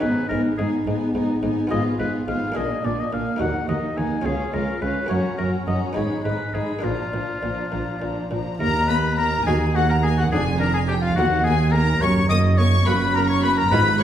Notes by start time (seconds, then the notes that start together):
Already playing: B3
0.00 G#1 G#2 B3 D#4 G#4 B4 G#5
0.29 G#1 G#2 B3 D#4 A#4 G#5
0.57 G#1 G#2 B3 D#4 G#4 G#5
0.86 G#1 G#2 B3 D#4 G#5
1.15 G#1 G#2 B3 D#4 G#5
1.43 G#1 G#2 B3 D#4 G#5
1.67 B3 F4 G#4 D#5
1.72 G#1 G#2 B3 F4 G#5
1.99 G#1 G#2 B3 F4 B4 G#5
2.28 G#1 G#2 B3 F4 F5 G#5
2.52 A#3 D4 G#4
2.56 A#1 A#2 A#3 D4 D#5 G#5
2.84 A#1 A#2 A#3 D4 D5 G#5
3.00 D#5
3.12 A#1 A#2 A#3 D4 F5 G#5
3.36 A#3 D#4 F#4
3.41 D#2 A#3 F#5
3.68 D#2 A#3 D#4 D#5 F#5
3.95 D#2 A#3 D#4 F#5 G#5
4.22 C#2 C#4 F4
4.26 C#2 C#4 G#4 F5
4.52 C#2 C#4 F4 A#4 F5
4.80 C#2 C#4 F4 B4 F5
5.06 F#1 F#2 A#3 F#4 A#4 C#5
5.10 F#2 C#4 A#5
5.38 F#1 F#2 C#4 F#4 A#4 A#5
5.67 F#1 F#2 C#4 F#4 D#5 A#5
5.93 G#1 G#2 G#3 B3 D#4 G#4
5.97 G#2 C#5 B5
6.24 G#1 G#2 G#3 D#4 B4 B5
6.53 G#1 G#2 G#3 D#4 G#4 B5
6.79 A#3 D4 F4
6.83 A#1 A#2 F3 D4 F4 A#5
7.12 A#1 A#2 F3 D4 A#5
7.42 A#1 A#2 F3 D4 A#5
7.71 A#1 A#2 F3 D4 A#5
8.01 A#1 A#2 F3 D4 A#5
8.31 A#1 A#2 F3 D4 A#5
8.59 D#2 A#3 A#4 A#5
8.88 A#3 B4 B5
9.16 A#3 A#4 A#5
9.46 D#2 A#3 D#4 F#4 G#4 G#5
9.74 A#3 F#4 F#5
9.89 A#4 A#5
10.03 A#3 G#4 G#5
10.17 F#4 F#5
10.32 F1 F2 D4 G#4 G#5
10.60 D4 A#4 A#5
10.74 G#4 G#5
10.88 D4 G4 G5
11.01 F4 F5
11.15 D#2 A#3 F#4 A#4 F#5
11.44 A#3 G#4 G#5
11.72 A#3 A#4 A#5
12.01 F#1 F#2 A#3 C#5 C#6
12.29 A#3 D#5 D#6
12.58 A#3 C#5 C#6
12.86 F#1 F#2 A#3 F#4 A#4 B4 B5
13.15 A#3 A#4 A#5
13.29 C#5 C#6
13.43 A#3 B4 B5
13.57 A#4 A#5
13.71 G#1 G#2 G#3 B3 F4 G#4 B4 B5
13.99 F4 C#6